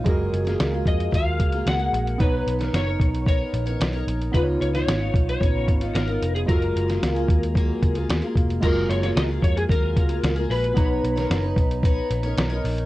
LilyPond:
<<
  \new Staff \with { instrumentName = "Electric slide guitar" } { \time 4/4 \key fis \major \tempo 4 = 112 r4. dis''8 eis''4 fis''4 | b'4 cis''4 cis''4. r8 | b'8 cis''16 cis''4 cis''4~ cis''16 ais'8. gis'16 | ais'2. r4 |
ais'8 cis''16 cis''16 dis''8 cis''16 gis'16 ais'4. b'8~ | b'2.~ b'8 r8 | }
  \new Staff \with { instrumentName = "Synth keys" } { \time 4/4 \key fis \major <gis fis' gis' ais'>1 | <b dis' cis'' ais''>1 | <b dis' eis' b' cis''>1 | <gis eis' fis' a' ais'>1 |
<gis eis' fis' ais'>1 | <b dis' cis'' ais''>1 | }
  \new Staff \with { instrumentName = "Steel-string acoustic guitar" } { \time 4/4 \key fis \major <fis ais eis' gis'>8. <ais eis' gis'>8 <ais eis' gis'>8. <fis ais eis' gis'>8. <ais eis' gis'>8 <ais gis'>8. | <b dis' cis''>8. <dis' ais' cis''>8 <dis' ais' cis''>8. <b dis' ais' cis''>8. <dis' ais' cis''>8 <dis' ais' cis''>8. | <cis b dis' eis'>8. <b dis' eis'>8 <b dis' eis'>8. <cis b dis' eis'>8. <b dis' eis'>8 <b dis' eis'>8. | <fis ais eis' gis'>8. <ais eis' gis'>8 <ais eis' gis'>8. <fis ais eis' gis'>8. <ais eis' gis'>8 <ais eis' gis'>8. |
<fis ais eis' gis'>8. <ais eis' gis'>8 <ais eis' gis'>8. <fis ais eis' gis'>8. <ais eis' gis'>8 <ais eis' gis'>8. | <b dis' cis''>8. <dis' ais' cis''>8 <dis' cis''>8. <b dis' cis''>8. <dis' ais' cis''>8 <dis' ais' cis''>8. | }
  \new Staff \with { instrumentName = "Picked electric bass" } { \clef bass \time 4/4 \key fis \major fis,,8 fis,,8 cis,8 eis,8 dis,8 cis,8 cis,8 ais,,8 | b,,8 b,,8 fis,,8 b,,4 ais,,8 b,,8 ais,,8 | cis,8 cis,8 gis,,8 b,,8 ais,,8 gis,,8 gis,,8 eis,,8 | fis,,8 fis,,8 cis,8 dis,4 cis,8 dis,16 r16 eis,,8 |
fis,,8 fis,,8 cis,8 eis,8 dis,8 cis,8 cis,8 ais,,8 | b,,8 b,,8 fis,,8 b,,4 ais,,8 b,,8 ais,,8 | }
  \new DrumStaff \with { instrumentName = "Drums" } \drummode { \time 4/4 <hh bd>8 hh16 <hh sn>16 <hh sn>8 <hh bd>16 hh16 <hh bd>8 <hh bd>16 hh16 <hh sn>16 hh16 hh16 hh16 | <hh bd>8 hh16 <hh sn>16 <hh sn>8 <hh bd>16 hh16 <hh bd>8 hh16 hh16 <hh sn>16 hh16 hh16 hh16 | <hh bd>8 hh16 <hh sn>16 <hh sn>8 <hh bd>16 hh16 <hh bd>8 <hh bd>16 hh16 <hh sn>16 hh16 hh16 hh16 | <hh bd>16 hh16 hh16 <hh sn>16 <hh sn>16 hh16 <hh bd>16 hh16 <hh bd>8 <hh bd>16 hh16 <hh sn>16 hh16 <hh bd>16 hh16 |
<cymc hh bd>8 hh16 <hh sn>16 <hh sn>8 <hh bd>16 hh16 <hh bd>8 <hh bd>16 hh16 <hh sn>16 hh16 hho16 hh16 | <hh bd>8 hh16 <hh sn>16 <hh sn>8 <hh bd>16 hh16 <hh bd>8 hh16 hh16 <hh sn>16 hh16 hho16 hh16 | }
>>